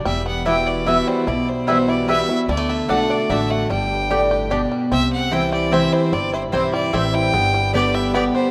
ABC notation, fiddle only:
X:1
M:3/4
L:1/16
Q:1/4=148
K:Clyd
V:1 name="Fiddle"
e2 f2 g2 d2 e2 c2 | d2 c2 c2 d2 e3 z | d2 e2 f2 d2 e2 f2 | g8- g2 z2 |
e2 f2 g2 d2 e2 c2 | d2 c2 c2 d2 e2 g2- | g4 d2 e2 d2 c2 |]